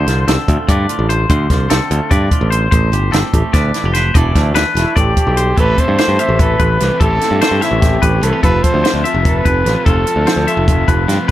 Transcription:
Already playing: D3 C5
0.07 C2 F4, snare, closed hi-hat
0.28 C2 C4 A4, snare, closed hi-hat
0.48 D2 A3 F4, kick, closed hi-hat
0.68 G2 B4 D5, kick, closed hi-hat
0.89 A2 F4, closed hi-hat
0.99 A1
1.09 C5, closed hi-hat
1.29 D2 D3 C5, kick, closed hi-hat
1.50 C2 F4, kick, snare, closed hi-hat
1.70 C2 C4 A4, snare, closed hi-hat
1.91 D2 A3 F4, closed hi-hat
2.11 G2 B4 D5, kick, closed hi-hat
2.31 A2 F4, kick, closed hi-hat
2.41 A1
2.50 C5, closed hi-hat
2.71 A1 A2 C5, kick, closed hi-hat
2.92 G1 G4, closed hi-hat
3.12 G1 C4 A4, snare, closed hi-hat
3.33 A1 A3 G4, kick, closed hi-hat
3.53 D2 B4 D5, kick, snare, closed hi-hat
3.74 E3 E4, snare, closed hi-hat
3.84 F1 G4
3.94 B4 C5, snare, closed hi-hat
4.14 E1 E3 A3 D4 E4 A4 D5, kick, closed hi-hat
4.35 D2 E4, kick, snare, closed hi-hat
4.54 D2 D4 B4, snare, closed hi-hat
4.75 E1 A3 E4, snare, closed hi-hat
4.96 A1 E3 G4 D5, kick, closed hi-hat
5.16 F3, kick, closed hi-hat
5.27 B1
5.37 G3 C5, closed hi-hat
5.56 A1 A2 E3 A3 C4 E4 G4 A4 B4, kick, closed hi-hat
5.77 A3 C4 E4 C5, kick, closed hi-hat
5.88 G2
5.97 A2 E3 A3 C4 E4 C5, snare, closed hi-hat
6.08 G2
6.18 A3 C4 E4 G4 E5, closed hi-hat
6.29 A1
6.39 A4 B4, kick, closed hi-hat
6.59 A1 E3 B4, kick, closed hi-hat
6.80 C2 E3 A3 C4 E4 G4, snare, closed hi-hat
7.00 A1 A2 E3 A3 C4 E4 G4 A4, kick, closed hi-hat
7.20 A3 C4 E4, snare, closed hi-hat
7.24 C4
7.31 G2
7.40 A2 E3 A3 C4 E4 C5, snare, closed hi-hat
7.51 G2
7.60 A3 C4 E4 E5, snare, closed hi-hat
7.64 C4
7.71 A1
7.81 C4 G4, kick, snare, closed hi-hat
8.02 A1 E3 B4, kick, closed hi-hat
8.22 C2 E3 A3 C4 E4 A4, closed hi-hat
8.33 G4
8.42 F1 F3 A3 C4 F4 A4 B4, kick, closed hi-hat
8.63 A3 C4 F4 C5, kick, closed hi-hat
8.74 D2
8.83 F3 A3 C4 F4 C5, snare, closed hi-hat
8.94 D2
9.03 A3 C4 F4 E5, closed hi-hat
9.14 F1
9.25 A4 B4, kick, closed hi-hat
9.45 F1 C3 B4, kick, closed hi-hat
9.65 A1 F3 A3 C4 F4, snare, closed hi-hat
9.85 F1 F3 A3 C4 F4 A4, kick, closed hi-hat
9.89 F4
10.06 A3 C4 F4, closed hi-hat
10.16 D2
10.25 F3 A3 C4 F4 C5, snare, closed hi-hat
10.36 D2
10.46 A3 C4 F4 E5, closed hi-hat
10.57 F1
10.68 F4, kick, closed hi-hat
10.88 F1 C3 B4, kick, closed hi-hat
11.08 G2 F3 A3 C4 F4, snare, closed hi-hat
11.27 C3

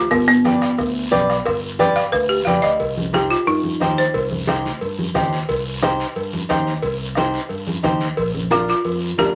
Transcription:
Already playing: F4
0.11 G1 B3, bombo low, bombo rim, cowbell, high conga, long guiro
0.28 B3
0.44 G4 B4 D5, bombo rim, cowbell, high conga, short guiro
0.61 bombo rim, short guiro
0.78 D2, bombo low, bombo rim, cowbell, high conga, long guiro
1.11 B1 G4 B4 D5, bombo low, bombo rim, cowbell, high conga, short guiro
1.30 bombo rim, short guiro
1.45 G1, bombo low, bombo rim, cowbell, high conga, long guiro
1.79 G4 B4 D5, bombo rim, cowbell, high conga, short guiro
1.96 F5, bombo rim, short guiro
2.12 D2 B4, bombo low, bombo rim, cowbell, high conga, long guiro
2.29 G4
2.45 F2 G4 B4 D5 F5, bombo rim, cowbell, high conga, low conga, short guiro
2.62 D2 D#5, bombo rim, short guiro
2.80 C2, bombo low, cowbell, high conga, long guiro
2.97 high conga
3.13 D#4 G4 C5, bombo rim, cowbell, high conga, short guiro
3.30 F4, short guiro
3.47 G2 D#4, cowbell, high conga, long guiro
3.64 high conga
3.80 D#2 D#4 G4 C5, bombo low, bombo rim, cowbell, high conga, short guiro
3.98 C5, short guiro
4.14 C2, bombo low, cowbell, high conga, long guiro
4.31 high conga
4.47 D#4 G4 C5, bombo rim, cowbell, high conga, short guiro
4.65 low conga, short guiro
4.81 G2, cowbell, high conga, long guiro
4.99 high conga
5.14 D#2 D#4 G4 C5, bombo low, bombo rim, cowbell, high conga, low conga, low timbale, short guiro
5.33 short guiro
5.49 C2, bombo low, cowbell, high conga, long guiro
5.82 D#4 G4 C5, bombo rim, cowbell, high conga, short guiro
6.00 short guiro
6.16 G2, cowbell, high conga, long guiro
6.33 high conga
6.49 D#2 D#4 G4 C5, bombo low, bombo rim, cowbell, high conga, short guiro
6.67 short guiro
6.82 C2, bombo low, cowbell, high conga, long guiro
7.15 D#4 G4 C5, bombo rim, cowbell, high conga, short guiro
7.34 short guiro
7.49 G2, cowbell, high conga, long guiro
7.67 high conga
7.83 D#2 D#4 G4 C5, bombo low, bombo rim, cowbell, high conga, low conga, short guiro
8.00 short guiro
8.17 A#1, bombo low, cowbell, high conga, long guiro
8.34 high conga
8.50 D4 F4 A#4, bombo rim, cowbell, high conga, short guiro
8.68 F4, short guiro
8.85 F2, cowbell, high conga, long guiro
9.18 D2 D4 F4 G4 A#4, bombo low, bombo rim, cowbell, high conga, low timbale, short guiro

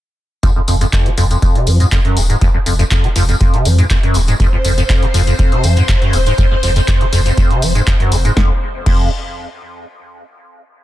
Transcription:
0.43 F2, kick, closed hi-hat, tambourine
0.56 F2
0.68 F1 F2, open hi-hat, tambourine
0.81 F2, closed hi-hat, tambourine
0.93 F2, kick, clap, closed hi-hat
1.06 D#3, closed hi-hat
1.17 F1 F2, open hi-hat, tambourine
1.31 F2, closed hi-hat, tambourine
1.42 F2, kick, closed hi-hat, tambourine
1.55 C3, closed hi-hat
1.67 F2 F3, open hi-hat, tambourine
1.80 G#2, closed hi-hat, tambourine
1.91 F2, kick, clap, closed hi-hat, tambourine
2.05 F#2, closed hi-hat
2.17 D#1 D#2, open hi-hat, tambourine
2.30 G#2, closed hi-hat, tambourine
2.41 F2, kick, closed hi-hat, tambourine
2.54 F2
2.66 F1 F2, open hi-hat, tambourine
2.79 F2, closed hi-hat, tambourine
2.91 F2, kick, clap, closed hi-hat
3.04 D#3, closed hi-hat
3.16 F1 F2, open hi-hat, tambourine
3.29 F2, closed hi-hat, tambourine
3.41 F2, kick, closed hi-hat
3.54 C3, closed hi-hat
3.65 F2 F3, open hi-hat, tambourine
3.78 G#2, closed hi-hat, tambourine
3.90 F2, kick, clap, closed hi-hat, tambourine
4.03 F#2, closed hi-hat
4.14 D#1 D#2, open hi-hat, tambourine
4.27 G#2, closed hi-hat, tambourine
4.40 F2 C5, kick, closed hi-hat, tambourine
4.53 F2
4.65 F1 F2, open hi-hat, tambourine
4.78 F2, closed hi-hat, tambourine
4.89 F2, kick, clap, closed hi-hat
5.02 D#3, closed hi-hat
5.14 F1 F2, open hi-hat, tambourine
5.27 F2, closed hi-hat, tambourine
5.38 F2, kick, closed hi-hat, tambourine
5.52 C3, closed hi-hat
5.64 F2 F3, open hi-hat, tambourine
5.76 G#2, closed hi-hat, tambourine
5.88 F2, kick, clap, closed hi-hat, tambourine
6.02 F#2, closed hi-hat
6.13 D#1 D#2, open hi-hat, tambourine
6.26 G#2, closed hi-hat, tambourine
6.38 F2, kick, closed hi-hat, tambourine
6.51 F2
6.63 F1 F2, open hi-hat, tambourine
6.76 F2, closed hi-hat, tambourine
6.88 F2, kick, clap, closed hi-hat
7.01 D#3, closed hi-hat
7.13 F1 F2, open hi-hat, tambourine
7.26 F2, closed hi-hat, tambourine
7.37 F2, kick, closed hi-hat, tambourine
7.51 C3, closed hi-hat
7.62 F1 F3, open hi-hat, tambourine
7.75 G#2, closed hi-hat, tambourine
7.87 F2, kick, clap, closed hi-hat
8.00 F#2, closed hi-hat
8.12 F1 D#2, open hi-hat, tambourine
8.25 G#2, closed hi-hat, tambourine
8.37 F1 F2, kick, snare
8.86 F1 F2, kick, crash

